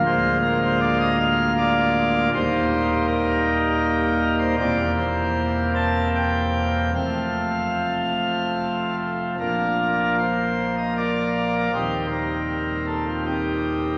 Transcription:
<<
  \new Staff \with { instrumentName = "Pipe organ" } { \time 3/4 \key bes \major \tempo 4 = 78 c''8 bes'16 c''16 d''16 ees''16 f''8 d''4 | c''4 bes'4.~ bes'16 c''16 | d''8 c''4 a''8 g''4 | f''2~ f''8 r8 |
<d' f' bes'>4 c''8. ees''16 <f' bes' d''>4 | <ees' g' c''>8 bes'4 a'16 f'16 <c' ees' g'>4 | }
  \new Staff \with { instrumentName = "Pipe organ" } { \clef bass \time 3/4 \key bes \major <d,, d, aes bes f'>2. | <ees,, ees, g bes ees'>2. | <e,, e, g bes c'>2. | <f,, f, f a c'>2. |
<bes,, bes, f bes>2. | <ees,, ees, ees g c'>2. | }
>>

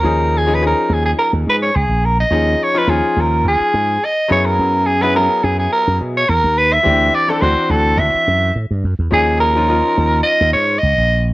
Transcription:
<<
  \new Staff \with { instrumentName = "Soprano saxophone" } { \time 4/4 \key ges \mixolydian \tempo 4 = 106 bes'8 aes'16 ces''16 bes'8 aes'16 aes'16 bes'8 ces''16 des''16 aes'8 bes'16 ees''16~ | ees''8 des''16 ces''16 aes'8 bes'8 aes'4 ees''8 des''16 bes'16~ | bes'8 aes'16 ces''16 bes'8 aes'16 aes'16 bes'8 r16 des''16 bes'8 ces''16 fes''16~ | fes''8 d''16 a'16 c''8 a'8 e''4 r4 |
aes'8 bes'4. ees''8 des''8 ees''8. r16 | }
  \new Staff \with { instrumentName = "Grand piano" } { \time 4/4 \key ges \mixolydian <f des' ees' aes'>8. <f des' ees' aes'>16 <f des' ees' aes'>4.~ <f des' ees' aes'>16 r4 r16 | <f des' ees' aes'>8. <f des' ees' f'>16 <f des' ees' f'>4.~ <f des' ees' f'>16 r8. <ges ces' fes' aes'>8~ | <ges ces' fes' aes'>8. <ges ces' fes' aes'>16 <ges ces' fes' aes'>4.~ <ges ces' fes' aes'>16 r4 r16 | <e c' d' g'>8. <e c' d' a'>16 <e c' d' ges'>4.~ <e c' d' ges'>16 r4 r16 |
<f des' ees' aes'>8. <f des' ees' f'>16 <f des' ees' f'>4.~ <f des' ees' f'>16 r4 r16 | }
  \new Staff \with { instrumentName = "Slap bass" } { \clef bass \time 4/4 \key ges \mixolydian ees,4. ees,8 r16 ees,16 aes,8 des,16 bes,,8. | ees,8 r8 ees,16 r16 ees,8 ees,16 r16 aes,8 r8 ges,8 | ges,4. ges,8 r16 ges,16 ces8 fes,16 ees,8. | d,8 r8 d,16 r16 d,8 d,16 r16 ges,8 a,16 g,16 ges,16 e,16 |
ees,4. ees,8 r16 ees,16 aes,8 des,16 bes,,8. | }
>>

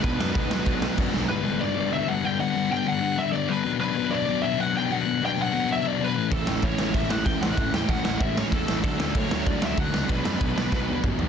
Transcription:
<<
  \new Staff \with { instrumentName = "Lead electric guitar" } { \time 4/4 \key b \minor \tempo 4 = 191 b'2. r4 | b'4 d''4 e''8 fis''8 g''8 fis''8~ | fis''8 g''8 fis''4 e''8 d''8 b'8. r16 | b'4 d''4 e''8 fis''8 g''8 fis''8~ |
fis''8 g''8 fis''4 e''8 d''8 b'8. r16 | a'4 cis''4 e''8 fis''8 g''8 fis''8~ | fis''8 g''8 fis''4 e''8 cis''8 a'8. r16 | a'4 cis''4 d''8 e''8 fis''4 |
b'2. r4 | }
  \new Staff \with { instrumentName = "Distorted electric guitar" } { \time 4/4 \key b \minor <b, fis b d'>8 <b, fis b d'>8 <b, fis b d'>8 <b, fis b d'>8 <b, fis b d'>8 <b, fis b d'>8 <b, fis b d'>8 <b, fis b d'>8 | <g, d g b d'>8 <g, d g b d'>8 <g, d g b d'>8 <g, d g b d'>8 <g, d g b d'>8 <g, d g b d'>8 <g, d g b d'>8 <g, d g b d'>8 | <g, d g b d'>8 <g, d g b d'>8 <g, d g b d'>8 <g, d g b d'>8 <g, d g b d'>8 <g, d g b d'>8 <g, d g b d'>8 <b, fis b d'>8 | <b, fis b d'>8 <b, fis b d'>8 <b, fis b d'>8 <b, fis b d'>8 <b, fis b d'>8 <b, fis b d'>8 <b, fis b d'>8 <b, fis b d'>8 |
<b, fis b d'>8 <b, fis b d'>8 <b, fis b d'>8 <b, fis b d'>8 <b, fis b d'>8 <b, fis b d'>8 <b, fis b d'>8 <a, e a cis' e'>8 | <a, e a cis' e'>8 <a, e a cis' e'>8 <a, e a cis' e'>8 <a, e a cis' e'>8 <a, e a cis' e'>8 <a, e a cis' e'>8 <a, e a cis' e'>8 <a, e a cis' e'>8 | <a, e a cis' e'>8 <a, e a cis' e'>8 <a, e a cis' e'>8 <a, e a cis' e'>8 <a, e a cis' e'>8 <a, e a cis' e'>8 <a, e a cis' e'>8 <a, e a cis' e'>8 | <d fis a d'>8 <d fis a d'>8 <d fis a d'>8 <d fis a d'>8 <d fis a d'>8 <d fis a d'>8 <d fis a d'>8 <d fis a d'>8 |
<b, fis b d'>8 <b, fis b d'>8 <b, fis b d'>8 <b, fis b d'>8 <b, fis b d'>8 <b, fis b d'>8 <b, fis b d'>8 <b, fis b d'>8 | }
  \new Staff \with { instrumentName = "Overdriven electric guitar" } { \time 4/4 \key b \minor <b, fis b d'>8 <b, fis b d'>8 <b, fis b d'>8 <b, fis b d'>8 <b, fis b d'>8 <b, fis b d'>8 <b, fis b d'>8 <b, fis b d'>8 | r1 | r1 | r1 |
r1 | <a, e a cis' e'>8 <a, e a cis' e'>8 <a, e a cis' e'>8 <a, e a cis' e'>8 <a, e a cis' e'>8 <a, e a cis' e'>8 <a, e a cis' e'>8 <a, e a cis' e'>8 | <a, e a cis' e'>8 <a, e a cis' e'>8 <a, e a cis' e'>8 <a, e a cis' e'>8 <a, e a cis' e'>8 <a, e a cis' e'>8 <a, e a cis' e'>8 <a, e a cis' e'>8 | <d fis a d'>8 <d fis a d'>8 <d fis a d'>8 <d fis a d'>8 <d fis a d'>8 <d fis a d'>8 <d fis a d'>8 <d fis a d'>8 |
<b, fis b d'>8 <b, fis b d'>8 <b, fis b d'>8 <b, fis b d'>8 <b, fis b d'>8 <b, fis b d'>8 <b, fis b d'>8 <b, fis b d'>8 | }
  \new Staff \with { instrumentName = "Picked electric bass" } { \clef bass \time 4/4 \key b \minor b,,8 fis,8 b,,8 b,,8 b,,4 fis,8 b,,8 | r1 | r1 | r1 |
r1 | a,,8 a,,8 a,,8 a,,8 a,,8 a,,8 a,,8 a,,8 | a,,8 e,8 a,,8 a,,8 a,,4 e,8 a,,8 | d,8 d,8 d,8 d,8 d,8 d,8 d,8 cis,8 |
b,,8 fis,8 b,,8 b,,8 b,,4 fis,8 b,,8 | }
  \new DrumStaff \with { instrumentName = "Drums" } \drummode { \time 4/4 <cymc bd>8 sn8 <cymc bd>8 sn8 <cymc bd>8 sn8 <cymc bd>8 sn8 | r4 r4 r4 r4 | r4 r4 r4 r4 | r4 r4 r4 r4 |
r4 r4 r4 r4 | <cymc bd>8 sn8 <cymc bd>8 sn8 <cymc bd>8 sn8 <cymc bd>8 sn8 | <cymc bd>8 sn8 <cymc bd>8 sn8 <cymc bd>8 sn8 <cymc bd>8 sn8 | <cymc bd>8 sn8 <cymc bd>8 sn8 <cymc bd>8 sn8 <cymc bd>8 sn8 |
<cymc bd>8 sn8 <cymc bd>8 sn8 <bd sn>4 <bd toml>8 tomfh8 | }
>>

